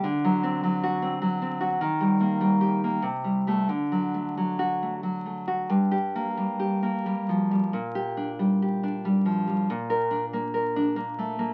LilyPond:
\new Staff \with { instrumentName = "Nylon-string guitar" } { \time 3/4 \key g \minor \tempo 4 = 92 << { r4 \tuplet 3/2 { r8 fis'4 } r4 | r4 \tuplet 3/2 { r8 g'4 r4 a8 } | r4 \tuplet 3/2 { r8 fis'4 } r4 | \tuplet 3/2 { r8 g'4 } r2 |
\tuplet 3/2 { r8 g'4 } r2 | \tuplet 3/2 { r8 bes'4 } r2 | } \\ { \tuplet 3/2 { d8 fis8 c'8 fis4 c'8 fis8 c'8 fis'8 } | \tuplet 3/2 { ees8 g8 bes8 g4 bes8 c8 g8 g8 } | \tuplet 3/2 { d8 fis8 a8 fis4 a8 fis8 a8 fis'8 } | \tuplet 3/2 { g,4 bes8 g8 g'8 bes8 g8 f8 g8 } |
\tuplet 3/2 { bes,4 d'8 g8 g'8 d'8 g8 f8 g8 } | \tuplet 3/2 { bes,4 d'8 bes8 bes'8 d'8 bes8 a8 bes8 } | } >> }